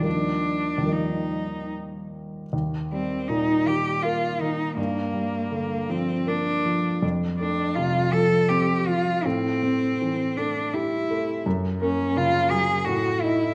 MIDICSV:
0, 0, Header, 1, 3, 480
1, 0, Start_track
1, 0, Tempo, 832178
1, 31, Time_signature, 3, 2, 24, 8
1, 991, Tempo, 783290
1, 1951, Tempo, 745342
1, 6271, Tempo, 722022
1, 8629, End_track
2, 0, Start_track
2, 0, Title_t, "Cello"
2, 0, Program_c, 0, 42
2, 43, Note_on_c, 0, 62, 44
2, 530, Note_on_c, 0, 63, 37
2, 539, Note_off_c, 0, 62, 0
2, 1000, Note_off_c, 0, 63, 0
2, 1731, Note_on_c, 0, 60, 47
2, 1949, Note_on_c, 0, 63, 52
2, 1959, Note_off_c, 0, 60, 0
2, 2200, Note_on_c, 0, 67, 49
2, 2210, Note_off_c, 0, 63, 0
2, 2429, Note_on_c, 0, 65, 49
2, 2439, Note_off_c, 0, 67, 0
2, 2673, Note_on_c, 0, 63, 49
2, 2683, Note_off_c, 0, 65, 0
2, 2909, Note_off_c, 0, 63, 0
2, 2913, Note_on_c, 0, 58, 50
2, 3633, Note_on_c, 0, 60, 47
2, 3643, Note_off_c, 0, 58, 0
2, 3877, Note_on_c, 0, 62, 45
2, 3886, Note_off_c, 0, 60, 0
2, 4363, Note_off_c, 0, 62, 0
2, 4592, Note_on_c, 0, 62, 53
2, 4827, Note_on_c, 0, 65, 60
2, 4837, Note_off_c, 0, 62, 0
2, 5070, Note_on_c, 0, 69, 59
2, 5079, Note_off_c, 0, 65, 0
2, 5301, Note_on_c, 0, 67, 51
2, 5311, Note_off_c, 0, 69, 0
2, 5547, Note_on_c, 0, 65, 56
2, 5556, Note_off_c, 0, 67, 0
2, 5791, Note_on_c, 0, 60, 64
2, 5801, Note_off_c, 0, 65, 0
2, 6520, Note_on_c, 0, 62, 53
2, 6530, Note_off_c, 0, 60, 0
2, 6763, Note_on_c, 0, 64, 51
2, 6773, Note_off_c, 0, 62, 0
2, 7243, Note_off_c, 0, 64, 0
2, 7482, Note_on_c, 0, 61, 63
2, 7718, Note_on_c, 0, 65, 74
2, 7728, Note_off_c, 0, 61, 0
2, 7941, Note_on_c, 0, 68, 62
2, 7951, Note_off_c, 0, 65, 0
2, 8169, Note_on_c, 0, 66, 55
2, 8179, Note_off_c, 0, 68, 0
2, 8408, Note_on_c, 0, 64, 61
2, 8418, Note_off_c, 0, 66, 0
2, 8629, Note_off_c, 0, 64, 0
2, 8629, End_track
3, 0, Start_track
3, 0, Title_t, "Grand piano"
3, 0, Program_c, 1, 0
3, 0, Control_c, 1, 64, 127
3, 0, Note_on_c, 1, 39, 28
3, 0, Note_on_c, 1, 53, 25
3, 0, Note_on_c, 1, 55, 27
3, 13, Note_on_c, 1, 58, 24
3, 25, Note_on_c, 1, 63, 25
3, 41, Control_c, 1, 64, 0
3, 152, Control_c, 1, 64, 127
3, 441, Note_off_c, 1, 39, 0
3, 450, Note_on_c, 1, 39, 28
3, 453, Note_off_c, 1, 53, 0
3, 462, Note_on_c, 1, 53, 24
3, 468, Note_off_c, 1, 55, 0
3, 476, Note_on_c, 1, 55, 25
3, 480, Note_off_c, 1, 58, 0
3, 488, Note_on_c, 1, 58, 23
3, 495, Note_off_c, 1, 63, 0
3, 504, Note_on_c, 1, 63, 23
3, 1427, Note_off_c, 1, 39, 0
3, 1433, Note_off_c, 1, 53, 0
3, 1441, Note_off_c, 1, 55, 0
3, 1448, Note_off_c, 1, 58, 0
3, 1456, Note_off_c, 1, 63, 0
3, 1488, Note_on_c, 1, 39, 41
3, 1497, Control_c, 1, 64, 0
3, 1606, Control_c, 1, 64, 127
3, 1728, Note_on_c, 1, 55, 32
3, 1955, Note_on_c, 1, 46, 30
3, 2101, Note_off_c, 1, 55, 0
3, 2197, Note_on_c, 1, 51, 31
3, 2338, Note_off_c, 1, 46, 0
3, 2439, Note_on_c, 1, 58, 31
3, 2578, Note_off_c, 1, 51, 0
3, 2677, Note_on_c, 1, 51, 34
3, 2819, Note_off_c, 1, 58, 0
3, 2888, Note_off_c, 1, 39, 0
3, 2904, Note_on_c, 1, 43, 42
3, 2915, Note_off_c, 1, 51, 0
3, 2924, Control_c, 1, 64, 0
3, 3027, Control_c, 1, 64, 127
3, 3143, Note_on_c, 1, 55, 35
3, 3387, Note_on_c, 1, 50, 32
3, 3533, Note_off_c, 1, 55, 0
3, 3631, Note_on_c, 1, 53, 31
3, 3779, Note_off_c, 1, 50, 0
3, 3871, Note_on_c, 1, 58, 34
3, 4024, Note_off_c, 1, 53, 0
3, 4122, Note_on_c, 1, 53, 34
3, 4264, Note_off_c, 1, 58, 0
3, 4335, Note_off_c, 1, 43, 0
3, 4360, Note_on_c, 1, 41, 43
3, 4363, Note_off_c, 1, 53, 0
3, 4374, Control_c, 1, 64, 0
3, 4482, Control_c, 1, 64, 127
3, 4602, Note_on_c, 1, 57, 32
3, 4839, Note_on_c, 1, 48, 36
3, 4977, Note_off_c, 1, 57, 0
3, 5072, Note_on_c, 1, 53, 31
3, 5217, Note_off_c, 1, 48, 0
3, 5310, Note_on_c, 1, 60, 39
3, 5456, Note_off_c, 1, 53, 0
3, 5559, Note_on_c, 1, 53, 35
3, 5694, Note_off_c, 1, 60, 0
3, 5762, Note_off_c, 1, 41, 0
3, 5794, Note_off_c, 1, 53, 0
3, 5796, Note_on_c, 1, 45, 46
3, 5802, Control_c, 1, 64, 0
3, 5919, Control_c, 1, 64, 127
3, 6036, Note_on_c, 1, 60, 38
3, 6288, Note_on_c, 1, 52, 35
3, 6422, Note_off_c, 1, 60, 0
3, 6530, Note_on_c, 1, 57, 35
3, 6670, Note_off_c, 1, 52, 0
3, 6769, Note_on_c, 1, 67, 36
3, 6910, Note_off_c, 1, 57, 0
3, 7008, Note_on_c, 1, 57, 39
3, 7150, Note_off_c, 1, 67, 0
3, 7218, Note_off_c, 1, 45, 0
3, 7245, Note_off_c, 1, 57, 0
3, 7247, Note_on_c, 1, 42, 54
3, 7253, Control_c, 1, 64, 0
3, 7359, Control_c, 1, 64, 127
3, 7482, Note_on_c, 1, 58, 44
3, 7715, Note_on_c, 1, 49, 43
3, 7859, Note_off_c, 1, 58, 0
3, 7952, Note_on_c, 1, 54, 34
3, 8094, Note_off_c, 1, 49, 0
3, 8166, Note_off_c, 1, 42, 0
3, 8181, Note_on_c, 1, 45, 49
3, 8190, Note_off_c, 1, 54, 0
3, 8199, Control_c, 1, 64, 0
3, 8286, Control_c, 1, 64, 127
3, 8427, Note_on_c, 1, 63, 41
3, 8629, Note_off_c, 1, 45, 0
3, 8629, Note_off_c, 1, 63, 0
3, 8629, End_track
0, 0, End_of_file